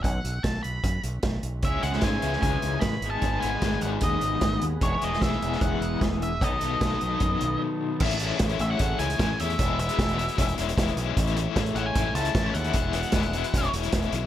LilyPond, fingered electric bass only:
\new Staff \with { instrumentName = "Fingered electric bass" } { \clef bass \time 4/4 \key e \major \tempo 4 = 151 b,,8 b,,8 b,,8 b,,8 fis,8 b,,8 b,,8 b,,8 | cis,8 cis,8 gis,8 cis,8 cis,8 cis,8 a,,8 gis,,8 | gis,,8 gis,,8 gis,,8 gis,,8 dis,8 gis,,8 gis,,8 dis,8 | e,,8 e,,8 b,,8 e,,8 e,,8 e,,8 e,,4 |
b,,8 b,,8 b,,8 b,,8 fis,8 b,,8 r4 | a,,4 a,,8 a,,8 a,,8 cis,8 a,,8 e,8 | e,,4 e,,4 e,,8 e,,8 e,,8 b,,8 | a,,4 a,,8 a,,8 a,,8 cis,8 a,,8 dis,8 |
e,,4 e,,4 e,,8 e,,8 e,,8 b,,8 | }